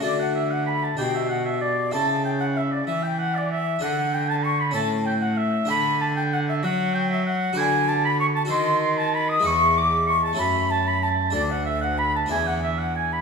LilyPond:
<<
  \new Staff \with { instrumentName = "Flute" } { \time 6/8 \key d \major \tempo 4. = 64 d''16 fis''16 e''16 fis''16 b''16 a''16 g''16 e''16 fis''16 e''16 d''8 | a''8 g''16 fis''16 e''16 d''16 e''16 g''16 fis''16 d''16 e''8 | fis''8 g''16 a''16 cis'''16 b''16 a''8 g''16 fis''16 e''8 | b''8 a''16 g''16 fis''16 e''16 fis''8 g''16 e''16 fis''8 |
\key e \mixolydian gis''8 a''16 b''16 cis'''16 a''16 bis''8. a''16 b''16 dis'''16 | cis'''8 d'''8 cis'''16 a''16 b''8 a''16 b''16 a''8 | d''16 fis''16 e''16 fis''16 b''16 a''16 gis''16 fis''16 e''16 fis''16 gis''16 b''16 | }
  \new Staff \with { instrumentName = "Oboe" } { \time 6/8 \key d \major d''16 fis''16 e''16 fis''16 b''16 a''16 g''16 e''16 fis''16 e''16 d''8 | a''8 g''16 fis''16 e''16 d''16 e''16 g''16 fis''16 d''16 e''8 | fis''8 g''16 a''16 cis'''16 b''16 a''8 g''16 fis''16 e''8 | b''8 a''16 g''16 fis''16 e''16 fis''8 g''16 e''16 fis''8 |
\key e \mixolydian gis''8 a''16 b''16 cis'''16 a''16 bis''8. a''16 b''16 dis'''16 | cis'''8 d'''8 cis'''16 a''16 b''8 a''16 b''16 a''8 | d''16 fis''16 e''16 fis''16 b''16 a''16 gis''16 fis''16 e''16 fis''16 gis''16 b''16 | }
  \new Staff \with { instrumentName = "Harpsichord" } { \time 6/8 \key d \major <a d' fis'>4. <d' g'>4. | <e' a'>2. | <d' a'>4. <cis' a'>4. | <d' a'>2. |
\key e \mixolydian <fis' b'>4. <fis' a'>4. | <gis e' b'>4. <a cis' a'>4. | <d' a'>4. <b d' e'>4. | }
  \new Staff \with { instrumentName = "Harpsichord" } { \clef bass \time 6/8 \key d \major d4. b,4. | cis4. e4. | d4. a,4. | d4. fis4. |
\key e \mixolydian d4. dis4. | e,4. fis,4. | d,4. e,4. | }
  \new Staff \with { instrumentName = "Cello" } { \clef bass \time 6/8 \key d \major d4. b,4. | cis4. e4. | d4. a,4. | d4. fis4. |
\key e \mixolydian d4. dis4. | e,4. fis,4. | d,4. e,4. | }
>>